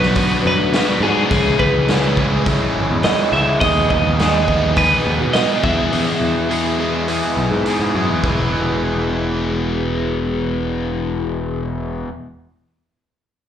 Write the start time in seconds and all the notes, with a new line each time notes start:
Already playing: B1 B2 F#3 B3 D4 F#4 B4
0.02 snare
0.15 B2 F#3 B3 D4 F#4, kick, open hi-hat
0.45 F#2 B4
0.59 D2
0.73 B2 F#3 B3 D4 F#4, snare, open hi-hat
1.00 G#2 B2 F#3 B3 D4 F#4 G#4
1.30 C#2 C#3 E3 G#3 C#4 E4 G#4, kick, open hi-hat
1.59 C#2 B4, kick
1.88 C#3 E3 G#3 C#4 E4 G#4, snare, open hi-hat
2.17 C#3 E3 G#3 C#4 E4 G#4, kick
2.46 C#3 E3 G#3 C#4 E4 G#4, kick, open hi-hat
2.75 G#1
2.91 E2
3.03 C#3 E3 G#3 C#4 G#4 D#5, snare, open hi-hat
3.07 E4
3.32 C#2 C#3 E3 G#3 C#4 E4 G#4 E5
3.60 D#2 D#3 G#3 B3 D#4 G#4 D#5, kick, open hi-hat
3.89 D#2 D#5, kick
4.20 D#3 G#3 B3 D#4 G#4, snare, open hi-hat
4.48 D#3 G#3 B3 D#4 G#4, kick
4.76 D#3 G#3 B3 D#4 G#4 B4, kick, open hi-hat
5.06 D#2
5.20 B2
5.33 D#3 G#3 B3 D#4 G#4 D#5, snare, open hi-hat
5.62 E2 B2 E3 G#3 B3 E4 G#4 E5, kick
5.91 E2 B2 E3 G#3 B3 E4 G#4, open hi-hat
6.20 E2
6.49 E2 B2 E3 G#3 B3 E4 G#4, open hi-hat
6.78 E2 B2 E3 G#3 B3 E4 G#4
7.08 E2 B2 E3 G#3 B3 E4 G#4, open hi-hat
7.37 B1
7.51 G#2
7.66 E2 B2 E3 G#3 B3 E4, open hi-hat
7.70 G#4
7.80 G#2
7.95 E2 F#2 B2 E3 G#3 B3 E4 G#4
8.10 E2
8.22 E1 E2 B2 E3 B3, kick
8.26 G#3 B3 E4 G#4